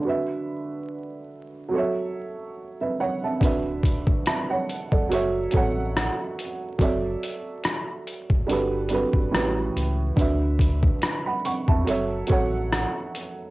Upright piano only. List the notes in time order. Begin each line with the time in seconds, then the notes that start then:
0.00 D3 D4 F#4
0.06 B4 E5
1.69 F#3 F#4
1.73 A4 C#5
1.78 E5
2.81 B4 E5
3.00 C#5 F#5
3.24 E5 A5
3.40 D3 D4 F#4 B4
3.45 E5
4.27 E5 A5
4.50 C#5 F#5
4.92 A4 D5
5.09 F#3 F#4 A4 C#5
5.14 E5
5.51 F#3 F#4 A4 C#5
5.56 F#5
6.78 F#3 F#4 A4 C#5 D5
6.83 E5
8.47 G3 D4 F#4 A4
8.52 B4
8.89 G3 D4 F#4 A4
8.94 B4
9.31 A2 E3 G3 C#4 F#4
9.36 B4
10.16 D3 D4 F#4 B4
10.21 E5
11.26 F#5 B5
11.45 F#5 C#6
11.68 E5 A5
11.85 F#3 F#4 A4 C#5
11.89 E5
12.27 F#3 F#4 A4 C#5
12.32 F#5